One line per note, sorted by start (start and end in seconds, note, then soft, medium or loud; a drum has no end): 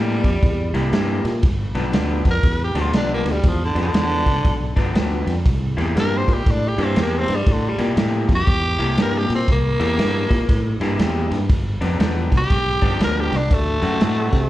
0.00 0.20 A2 medium
0.00 0.29 C3 medium
0.00 0.30 G3 medium
0.00 1.08 G3 loud
0.00 0.30 A#3 medium
0.00 0.30 E4 medium
0.24 0.40 F2 medium
0.24 kick medium
0.24 snare soft
0.24 ride medium
0.43 0.70 E2 medium
0.43 kick loud
0.43 snare soft
0.43 ride medium
0.73 0.90 C2 medium
0.73 0.91 C3 medium
0.73 0.92 G3 medium
0.73 0.92 A#3 medium
0.73 0.93 E4 medium
0.73 snare soft
0.73 ride medium
0.92 1.20 G2 medium
0.92 1.30 C3 medium
0.92 1.30 G3 medium
0.92 1.31 A#3 medium
0.92 1.31 E4 medium
0.92 snare loud
0.92 ride medium
1.25 1.41 A#2 medium
1.25 snare soft
1.25 ride medium
1.43 1.71 G1 medium
1.43 kick loud
1.43 snare soft
1.43 ride medium
1.75 1.91 B1 medium
1.75 1.92 G2 medium
1.75 1.92 F3 medium
1.75 1.93 B3 medium
1.75 1.93 D4 medium
1.75 snare soft
1.75 ride medium
1.93 2.21 D2 medium
1.93 2.31 G2 medium
1.93 2.31 F3 medium
1.93 2.31 B3 medium
1.93 2.31 D4 medium
1.93 snare loud
1.93 ride medium
2.25 2.41 F2 medium
2.25 kick medium
2.25 snare soft
2.25 ride medium
2.30 2.61 A#4 loud
2.43 2.71 E2 medium
2.43 kick loud
2.43 snare soft
2.43 ride medium
2.64 2.82 G4 medium
2.75 2.91 D2 medium
2.75 2.92 G2 medium
2.75 2.93 F3 medium
2.75 2.93 B3 medium
2.75 2.94 D4 loud
2.75 snare soft
2.75 ride medium
2.80 2.95 F4 medium
2.93 3.21 B1 medium
2.93 3.31 G2 medium
2.93 3.31 F3 medium
2.93 3.32 B3 medium
2.93 3.32 D4 medium
2.93 3.12 D4 medium
2.93 snare loud
2.93 ride medium
3.14 3.32 A#3 loud
3.25 3.42 D2 medium
3.25 snare soft
3.25 ride medium
3.31 3.50 G3 medium
3.43 3.72 E2 medium
3.43 kick loud
3.43 snare soft
3.43 ride medium
3.48 3.62 F3 medium
3.65 3.79 D3 medium
3.75 3.92 F2 medium
3.75 3.93 G2 medium
3.75 3.93 F3 medium
3.75 3.93 B3 medium
3.75 3.94 D4 medium
3.75 snare soft
3.75 ride medium
3.82 4.77 D3 loud
3.94 4.22 E2 medium
3.94 4.32 G2 medium
3.94 4.32 F3 medium
3.94 4.32 B3 medium
3.94 4.32 D4 medium
3.94 snare loud
3.94 ride medium
4.26 4.42 C2 medium
4.26 kick medium
4.26 snare soft
4.26 ride medium
4.45 4.73 B1 medium
4.45 kick loud
4.45 snare soft
4.45 ride medium
4.76 4.93 G1 medium
4.76 4.93 G2 medium
4.76 4.94 F3 medium
4.76 4.94 B3 medium
4.76 4.95 D4 medium
4.76 kick medium
4.76 snare soft
4.76 ride medium
4.95 5.23 D2 medium
4.95 5.32 G2 medium
4.95 5.32 F3 medium
4.95 5.33 B3 medium
4.95 5.33 D4 medium
4.95 snare loud
4.95 ride medium
5.27 5.43 F2 medium
5.27 snare soft
5.27 ride medium
5.46 5.73 C2 medium
5.46 kick loud
5.46 snare soft
5.46 ride medium
5.77 5.93 E2 medium
5.77 5.94 C3 medium
5.77 5.95 G3 medium
5.77 5.95 A#3 medium
5.77 5.96 E4 medium
5.77 snare soft
5.77 ride medium
5.96 6.24 G2 medium
5.96 6.33 C3 medium
5.96 6.33 G3 medium
5.96 6.33 A#3 medium
5.96 6.34 E4 medium
5.96 snare loud
5.96 ride medium
6.00 6.19 A#4 loud
6.17 6.35 C5 medium
6.28 6.44 A#2 medium
6.28 kick medium
6.28 snare soft
6.28 ride medium
6.34 6.52 G4 medium
6.46 6.74 A2 medium
6.46 kick loud
6.46 snare soft
6.46 ride medium
6.51 6.69 D4 medium
6.68 6.86 G4 medium
6.78 6.94 G2 medium
6.78 6.95 C3 medium
6.78 6.96 G3 medium
6.78 6.96 A#3 medium
6.78 6.96 E4 medium
6.78 snare soft
6.78 ride medium
6.84 6.98 C4 medium
6.96 7.25 E2 medium
6.96 7.34 C3 medium
6.96 7.34 G3 medium
6.96 7.34 A#3 medium
6.96 7.34 E4 medium
6.96 snare loud
6.96 ride medium
7.02 7.20 A#3 loud
7.19 7.37 C4 medium
7.28 7.45 G2 medium
7.28 snare soft
7.28 ride medium
7.36 7.54 G3 medium
7.46 7.75 A2 loud
7.46 kick loud
7.46 snare soft
7.46 ride medium
7.52 7.70 D3 medium
7.69 7.93 G3 medium
7.78 7.95 A#2 medium
7.78 7.96 C3 medium
7.78 7.96 G3 medium
7.78 7.97 A#3 medium
7.78 7.97 E4 medium
7.78 snare soft
7.78 ride medium
7.97 8.25 A2 medium
7.97 8.35 C3 medium
7.97 8.35 G3 medium
7.97 8.35 A#3 medium
7.97 8.35 E4 medium
7.97 snare loud
7.97 ride medium
8.29 8.45 F2 medium
8.29 kick medium
8.29 snare soft
8.29 ride medium
8.35 8.98 G4 loud
8.47 8.75 E2 medium
8.47 kick loud
8.47 snare soft
8.47 ride medium
8.79 8.95 C2 medium
8.79 8.96 C3 medium
8.79 8.97 G3 medium
8.79 8.97 A#3 loud
8.79 8.98 E4 loud
8.79 snare soft
8.79 ride medium
8.97 9.25 G2 medium
8.97 9.35 C3 medium
8.97 9.35 G3 medium
8.97 9.36 A#3 medium
8.97 9.36 E4 medium
8.97 snare loud
8.97 ride medium
9.02 9.19 A#4 medium
9.18 9.32 G4 loud
9.30 9.46 A#2 medium
9.30 snare soft
9.30 ride medium
9.35 9.50 C4 medium
9.48 9.76 C2 medium
9.48 10.97 A#3 loud
9.48 kick loud
9.48 snare soft
9.48 ride medium
9.80 9.96 E2 medium
9.80 9.97 C3 medium
9.80 9.97 G3 medium
9.80 9.98 A#3 medium
9.80 9.98 E4 medium
9.80 snare soft
9.80 ride medium
9.98 10.26 G2 medium
9.98 10.36 C3 medium
9.98 10.36 G3 medium
9.98 10.36 A#3 medium
9.98 10.36 E4 medium
9.98 snare loud
9.98 ride medium
10.30 10.47 A#2 loud
10.30 kick medium
10.30 snare soft
10.30 ride medium
10.49 10.77 A2 medium
10.49 kick loud
10.49 snare soft
10.49 ride medium
10.80 10.96 G2 medium
10.80 10.98 C3 medium
10.80 10.98 G3 medium
10.80 10.99 A#3 medium
10.80 10.99 E4 medium
10.80 snare soft
10.80 ride medium
10.99 11.27 E2 medium
10.99 11.36 C3 medium
10.99 11.37 G3 medium
10.99 11.37 A#3 medium
10.99 11.37 E4 medium
10.99 snare loud
10.99 ride medium
11.31 11.47 G2 medium
11.31 snare soft
11.31 ride medium
11.49 11.77 G1 medium
11.49 kick loud
11.49 snare soft
11.49 ride medium
11.81 11.97 F2 medium
11.81 11.99 G2 medium
11.81 11.99 F3 medium
11.81 11.99 B3 loud
11.81 12.00 D4 medium
11.81 snare soft
11.81 ride medium
12.00 12.28 E2 loud
12.00 12.37 G2 medium
12.00 12.37 F3 medium
12.00 12.38 B3 medium
12.00 12.38 D4 medium
12.00 snare loud
12.00 ride medium
12.32 12.48 C2 medium
12.32 kick medium
12.32 snare soft
12.32 ride medium
12.37 13.01 G4 loud
12.50 12.78 B1 loud
12.50 kick loud
12.50 snare soft
12.50 ride medium
12.82 12.98 G1 medium
12.82 12.99 G2 medium
12.82 12.99 F3 medium
12.82 12.99 B3 medium
12.82 13.00 D4 loud
12.82 kick medium
12.82 snare soft
12.82 ride medium
13.00 13.28 D2 medium
13.00 13.38 G2 medium
13.00 13.38 F3 medium
13.00 13.38 B3 medium
13.00 13.38 D4 medium
13.00 13.22 A#4 loud
13.00 snare loud
13.00 ride medium
13.20 13.38 G4 loud
13.32 13.48 C2 medium
13.32 snare soft
13.32 ride medium
13.37 13.55 D4 loud
13.51 13.79 D2 medium
13.51 14.49 A3 loud
13.51 kick loud
13.51 snare soft
13.51 ride medium
13.82 13.99 F#2 medium
13.82 14.00 D3 medium
13.82 14.00 A3 medium
13.82 14.01 C4 medium
13.82 14.01 F#4 loud
13.82 snare soft
13.82 ride medium
14.01 14.29 A2 medium
14.01 14.39 D3 medium
14.01 14.39 A3 medium
14.01 14.39 C4 medium
14.01 14.39 F#4 medium
14.01 snare loud
14.01 ride medium
14.32 14.49 C3 medium
14.32 kick medium
14.32 snare soft
14.32 ride medium